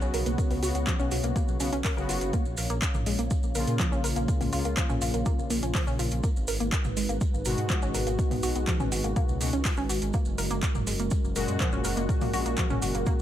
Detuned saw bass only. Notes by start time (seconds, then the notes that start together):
0.02 B1
0.14 B1
0.26 B1
0.50 C#2
0.62 C#2
0.75 C#2
0.99 B1
1.11 B1
1.24 B1
1.48 B1
1.60 B1
1.73 B1
1.97 F#1
2.09 F#1
2.21 F#1
2.46 A#1
2.58 A#1
2.70 A#1
2.94 A#1
3.06 A#1
3.19 A#1
3.43 A#1
3.55 A#1
3.68 A#2
3.92 A#1
4.04 A#1
4.16 A#1
4.41 C#2
4.53 C#2
4.65 C#2
4.90 A#1
5.02 A#1
5.14 A#1
5.38 A#1
5.50 A#1
5.63 A#1
5.87 A#1
5.99 A#1
6.12 A#1
6.36 G#1
6.48 G#1
6.60 G#1
6.85 G#1
6.97 G#1
7.09 G#1
7.34 G#1
7.46 G#1
7.58 G#2
7.82 G#1
7.94 G#1
8.07 G#1
8.31 B1
8.43 B1
8.56 B1
8.80 G#1
8.92 G#1
9.04 G#1
9.29 C#2
9.41 C#2
9.53 C#2
9.78 G#1
9.89 G#1
10.02 G#1
10.26 F#1
10.38 F#1
10.50 F#1
10.75 F#1
10.87 F#1
10.99 F#1
11.24 F#1
11.36 F#1
11.48 F#2
11.72 F#1
11.85 F#1
11.97 F#1
12.21 A#1
12.33 A#1
12.46 A#1
12.70 F#1
12.82 F#1
12.95 F#1